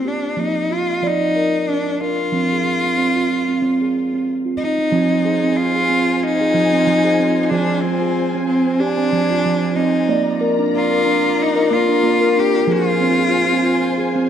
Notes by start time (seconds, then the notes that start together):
Already playing: A#3
0.05 D4 G4
0.37 F3 A#3 D#4
0.70 F4
1.02 F3 D5
1.07 D#4
1.36 A#4
1.69 D4
2.00 F4 A#4
2.32 F3 C4
2.52 G#4
2.84 C4
2.97 C4
3.16 F4
3.49 C4
3.62 C4
3.81 G#4
4.13 C4
4.45 F4
4.57 D#4
4.78 C4
4.91 F3 C4 F4 C5 G#5
5.25 G#4
5.44 C4
5.56 F4
5.76 G#4
5.90 C4
6.23 D#4
6.41 G#4
6.54 F3
6.72 C4
6.86 F3
7.04 G#4
7.20 C4
7.42 D#4
7.49 F3 D4 G#4
7.81 C4
8.02 G#4
8.34 C4
8.47 C4
8.80 D4 G4
8.98 C4
9.13 F3
9.30 F4
9.45 F3
9.76 C4 D#4
10.07 A#3 F4 D5 A#5
10.41 A#4
10.59 D4
10.76 F4
10.91 A#4
11.05 D4
11.42 D#4
11.56 A#4
11.71 A#3 F4
11.89 D4
12.03 A#3
12.21 A#4
12.36 D4 G4
12.67 F3 G#4 C5 G#5
12.72 F4
13.01 C4
13.19 G#4
13.51 C4
13.98 G#4
14.16 C4